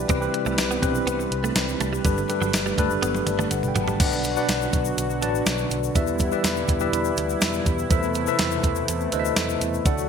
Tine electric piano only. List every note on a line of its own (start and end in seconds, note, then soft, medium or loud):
0.00 0.12 D4 medium
0.00 0.09 E4 medium
0.00 0.32 F#4 medium
0.00 0.09 G4 medium
0.00 0.10 B4 medium
0.00 0.32 D5 medium
0.00 0.12 E5 medium
0.00 0.12 F#5 medium
0.00 0.12 G5 medium
0.00 0.12 A5 medium
0.00 0.11 B5 medium
0.09 0.79 C3 medium
0.09 0.17 C4 medium
0.09 0.18 E4 medium
0.09 0.18 G4 medium
0.09 0.18 B4 medium
0.20 0.62 C4 medium
0.20 0.63 E4 medium
0.20 0.63 G4 medium
0.20 0.63 B4 loud
0.82 1.48 C4 medium
0.82 0.88 D4 medium
0.82 1.49 G4 medium
0.82 1.49 B4 loud
0.88 1.51 E4 medium
2.04 2.74 G2 medium
2.04 2.21 D4 medium
2.04 2.21 G4 medium
2.04 2.21 A4 medium
2.04 2.22 B4 medium
2.29 2.62 D4 medium
2.29 2.62 G4 medium
2.29 2.62 A4 medium
2.29 2.62 B4 medium
2.78 3.44 D4 medium
2.78 3.44 G4 medium
2.78 3.44 A4 medium
2.78 3.44 B4 loud
3.27 3.49 D5 medium
3.51 3.66 F#5 medium
3.68 3.83 G5 medium
3.84 3.99 A5 medium
4.00 4.69 B2 medium
4.00 4.25 D4 medium
4.00 4.25 F#4 medium
4.00 4.25 B4 medium
4.00 4.25 D5 medium
4.00 4.25 F#5 medium
4.36 4.94 D4 medium
4.36 4.94 F#4 medium
4.36 4.94 B4 medium
4.36 4.95 D5 medium
4.36 4.95 F#5 medium
5.21 5.71 D4 medium
5.21 5.71 F#4 medium
5.21 5.72 B4 medium
5.21 5.72 D5 medium
5.21 5.72 A5 medium
5.95 6.65 E3 medium
5.95 6.20 E4 medium
5.95 6.20 G4 medium
5.95 6.20 B4 medium
5.95 6.20 D5 medium
5.95 6.20 E5 medium
6.32 6.65 E4 medium
6.32 6.65 G4 medium
6.32 6.65 B4 medium
6.32 6.65 D5 medium
6.32 6.65 E5 medium
6.80 7.46 E4 medium
6.80 7.47 G4 medium
6.80 7.47 B4 medium
6.80 7.47 D5 medium
6.80 7.47 E5 medium
7.90 8.60 E3 medium
7.90 8.15 E4 medium
7.90 8.15 A4 medium
7.90 8.15 B4 medium
7.90 8.15 C5 medium
7.90 8.16 E5 medium
8.27 8.85 E4 medium
8.27 8.85 A4 medium
8.27 8.85 B4 medium
8.27 8.85 C5 medium
8.27 8.85 E5 loud
9.12 9.62 E4 medium
9.12 9.62 A4 medium
9.12 9.62 B4 medium
9.12 9.62 C5 medium
9.12 9.19 D#5 medium
9.20 9.65 E5 loud
9.85 10.09 D3 medium
9.85 10.09 D4 medium
9.85 10.09 F#4 medium
9.85 10.09 A4 medium
9.85 10.09 D5 medium
9.85 10.09 F#5 medium